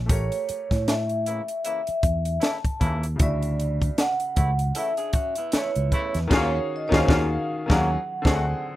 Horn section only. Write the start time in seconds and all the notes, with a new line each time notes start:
1.25 C#3 E3 A#3 E4
1.64 C#3 E3 A#3 E4
2.40 C#3 E3 A#3 E4
2.79 C#3 E3 A#3 E4
4.35 C#3 E3 A3 E4
4.75 C#3 E3 A3 E4
5.52 C#3 E3 A3 E4
5.92 C#3 E3 A3 E4
6.30 C#3 F3 A#3 F4
6.92 C#3 F3 A#3 F4
7.08 C#3 F3 A#3 F4
7.69 C#3 F3 A#3
8.24 C3 F#3 A3 F#4